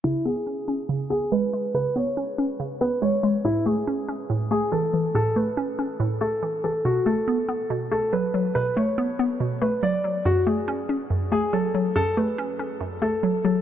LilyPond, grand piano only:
\new Staff \with { instrumentName = "Grand piano" } { \time 4/4 \key cis \minor \tempo 4 = 141 e'8 gis'2 gis'8 b'4 | b'8 cis''2 b'8 cis''4 | e'8 gis'2 gis'8 a'4 | a'8 b'2 a'4 a'8 |
fis'8 a'2 a'8 b'4 | b'8 cis''2 b'8 d''4 | fis'8 gis'2 gis'8 a'4 | a'8 b'2 a'4 a'8 | }